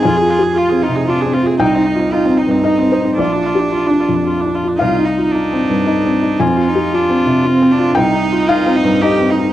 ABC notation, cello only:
X:1
M:3/4
L:1/8
Q:1/4=113
K:Cm
V:1 name="Cello"
A2 F E D C | E2 F E3 | D4- D z | F E D4 |
C E D2 C D | E2 F E G E |]